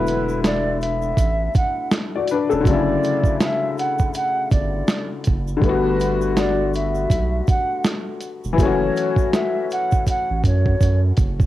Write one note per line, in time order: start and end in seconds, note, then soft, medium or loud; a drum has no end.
0.00 1.14 E1 loud
0.00 2.59 D3 medium
0.00 2.61 F#3 medium
0.00 2.63 A3 medium
0.00 2.64 B3 medium
0.00 1.91 E4 medium
0.00 0.40 B4 loud
0.07 closed hi-hat medium
0.07 shaker medium
0.29 shaker soft
0.44 0.78 D5 medium
0.44 snare loud
0.44 closed hi-hat medium
0.44 shaker medium
0.81 1.58 E5 medium
0.81 closed hi-hat medium
0.81 shaker soft
1.02 shaker soft
1.17 1.49 A1 medium
1.17 kick medium
1.17 closed hi-hat medium
1.17 shaker medium
1.54 1.89 F#5 medium
1.54 kick loud
1.54 closed hi-hat medium
1.54 shaker medium
1.92 snare loud
1.92 closed hi-hat medium
1.92 shaker medium
2.16 2.29 F#4 soft
2.16 2.29 D5 medium
2.28 2.51 B4 medium
2.28 closed hi-hat medium
2.28 shaker medium
2.32 2.51 D4 medium
2.49 2.64 E1 medium
2.49 2.86 C#4 soft
2.49 2.85 A4 medium
2.49 shaker soft
2.60 5.55 D3 medium
2.60 5.57 F#3 medium
2.65 2.97 F#1 loud
2.65 5.59 A3 medium
2.65 3.37 D5 loud
2.65 kick loud
2.65 closed hi-hat medium
2.65 shaker medium
2.70 5.60 C#3 medium
2.70 5.62 E4 medium
3.03 closed hi-hat medium
3.03 shaker medium
3.24 kick medium
3.24 shaker medium
3.40 3.80 E5 medium
3.40 snare loud
3.40 closed hi-hat medium
3.40 shaker medium
3.78 4.11 F#5 medium
3.78 closed hi-hat medium
3.78 shaker soft
3.99 kick medium
3.99 shaker medium
4.14 4.48 F#5 medium
4.14 closed hi-hat medium
4.14 shaker medium
4.51 4.83 G1 medium
4.51 5.07 D5 medium
4.51 kick loud
4.51 closed hi-hat medium
4.51 shaker medium
4.88 snare loud
4.88 closed hi-hat medium
4.88 shaker medium
5.24 5.58 F#1 medium
5.24 kick loud
5.24 closed hi-hat medium
5.24 shaker soft
5.48 shaker soft
5.57 8.52 D3 medium
5.57 8.53 G3 medium
5.62 7.06 G1 loud
5.62 8.55 A3 medium
5.62 6.33 B4 loud
5.62 kick loud
5.62 closed hi-hat medium
5.62 shaker medium
5.66 8.56 B3 medium
5.66 8.58 F#4 loud
6.00 closed hi-hat medium
6.00 shaker medium
6.22 shaker medium
6.37 6.76 D5 medium
6.37 snare loud
6.37 closed hi-hat medium
6.37 shaker medium
6.74 7.51 E5 medium
6.74 closed hi-hat medium
6.74 shaker soft
6.95 shaker medium
7.10 7.42 B1 medium
7.10 kick loud
7.10 closed hi-hat medium
7.10 shaker medium
7.47 7.82 F#5 medium
7.47 kick loud
7.47 closed hi-hat medium
7.47 shaker soft
7.84 snare loud
7.84 closed hi-hat medium
7.84 shaker medium
8.20 closed hi-hat medium
8.20 shaker soft
8.44 8.57 E1 medium
8.44 shaker soft
8.53 11.46 E3 medium
8.53 11.46 F#3 medium
8.58 8.90 F#1 loud
8.58 11.46 A3 medium
8.58 9.29 C#5 medium
8.58 kick loud
8.58 closed hi-hat medium
8.58 shaker medium
8.62 11.46 C#4 medium
8.62 11.46 F#4 medium
8.96 closed hi-hat medium
8.96 shaker medium
9.16 kick medium
9.16 shaker medium
9.33 9.67 E5 medium
9.33 snare loud
9.33 closed hi-hat medium
9.33 shaker medium
9.70 10.04 F#5 medium
9.70 closed hi-hat medium
9.70 shaker soft
9.91 kick medium
9.91 shaker medium
10.06 10.41 F#5 medium
10.06 kick medium
10.06 closed hi-hat medium
10.06 shaker medium
10.30 10.42 A1 medium
10.44 10.75 F#2 loud
10.44 11.01 C#5 medium
10.44 kick medium
10.44 closed hi-hat medium
10.44 shaker soft
10.66 kick medium
10.81 11.12 F#2 loud
10.81 kick medium
10.81 closed hi-hat medium
10.81 shaker medium
11.17 11.46 F#1 medium
11.17 kick loud
11.17 closed hi-hat medium
11.17 shaker medium
11.40 kick loud
11.40 shaker soft